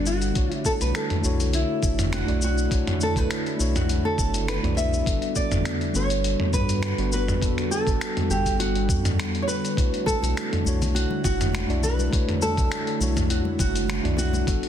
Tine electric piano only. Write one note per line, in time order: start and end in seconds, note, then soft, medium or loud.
0.00 0.38 G3 medium
0.00 0.37 B3 medium
0.00 0.34 D4 medium
0.00 0.36 F#4 medium
0.00 0.38 A4 medium
0.33 1.19 A3 medium
0.33 1.20 D4 medium
0.33 1.20 E4 medium
0.33 1.21 F#4 medium
0.38 1.22 C#5 medium
1.21 2.23 A3 medium
1.21 2.24 D4 medium
1.21 2.24 E4 medium
1.21 2.25 F#4 medium
1.26 2.26 C#5 medium
2.26 2.67 A3 medium
2.26 2.67 D4 medium
2.26 2.68 E4 medium
2.26 2.68 F#4 medium
2.26 2.68 D5 medium
2.68 3.55 A3 medium
2.68 3.55 D4 medium
2.68 3.56 E4 medium
2.68 3.56 F#4 medium
2.73 3.57 C#5 medium
3.56 4.59 A3 medium
3.56 4.59 D4 medium
3.56 4.60 E4 medium
3.56 4.60 F#4 medium
3.61 4.61 C#5 medium
4.62 5.03 A3 medium
4.62 5.03 D4 medium
4.62 5.03 E4 medium
4.62 5.04 F#4 medium
4.62 5.04 D5 loud
5.04 5.90 G3 medium
5.04 5.90 B3 medium
5.04 5.91 D4 medium
5.04 5.92 F#4 medium
5.08 5.92 A4 medium
5.92 6.94 G3 medium
5.92 6.95 B3 medium
5.92 6.95 D4 medium
5.92 6.96 F#4 medium
5.97 6.97 A4 medium
6.98 7.38 G3 medium
6.98 7.38 B3 medium
6.98 7.39 D4 medium
6.98 7.39 F#4 medium
6.98 7.39 B4 medium
7.41 8.26 G3 medium
7.41 8.27 B3 medium
7.41 8.27 D4 medium
7.41 8.28 F#4 medium
7.45 8.28 A4 medium
8.29 9.30 G3 medium
8.29 9.30 B3 medium
8.29 9.31 D4 medium
8.29 9.32 F#4 medium
8.33 9.32 A4 medium
9.75 10.61 A3 medium
9.75 10.61 D4 medium
9.75 10.62 E4 medium
9.75 10.63 F#4 medium
9.80 10.63 C#5 medium
10.64 11.65 A3 medium
10.64 11.66 D4 medium
10.64 11.66 E4 medium
10.64 11.67 F#4 medium
10.68 11.67 C#5 medium
11.68 12.08 A3 medium
11.68 12.09 D4 medium
11.68 12.09 E4 medium
11.68 12.09 F#4 medium
11.68 12.10 D5 medium
12.10 12.96 A3 medium
12.10 12.97 D4 medium
12.10 12.97 E4 medium
12.10 12.98 F#4 medium
12.14 12.98 C#5 medium
12.98 14.00 A3 medium
12.98 14.01 D4 medium
12.98 14.01 E4 medium
12.98 14.02 F#4 medium
13.03 14.03 C#5 medium
14.03 14.43 A3 medium
14.03 14.44 D4 medium
14.03 14.44 E4 medium
14.03 14.44 F#4 medium
14.03 14.45 D5 loud
14.45 14.69 G3 medium
14.45 14.69 B3 medium
14.45 14.69 D4 medium
14.45 14.69 F#4 medium
14.50 14.69 A4 medium